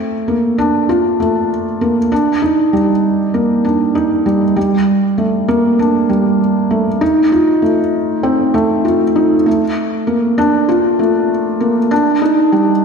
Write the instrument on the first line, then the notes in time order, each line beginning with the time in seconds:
felt piano
0.28 A#3
0.58 D4
0.89 F4
1.20 A3
1.81 A#3
2.12 D4
2.42 D#4
2.73 G3
3.34 A#3
3.65 D4
3.95 D#4
4.26 G3
4.56 G3
5.18 A3
5.48 A#3
5.79 D4
6.09 G3
6.71 A3
7.01 D#4
7.32 F4
7.62 A3
8.23 C4
8.54 A3
8.85 F4
9.16 D#4
9.46 A3
10.07 A#3
10.38 D4
10.69 F4
10.99 A3
11.61 A#3
11.91 D4
12.22 D#4
12.52 G3